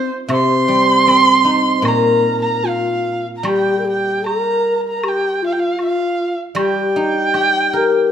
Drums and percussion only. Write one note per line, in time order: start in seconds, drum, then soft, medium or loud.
0.30 high woodblock medium
1.08 high woodblock soft
1.85 high woodblock medium
3.45 high woodblock medium
4.26 high woodblock soft
5.03 high woodblock medium
5.79 high woodblock soft
6.56 high woodblock medium
7.34 high woodblock soft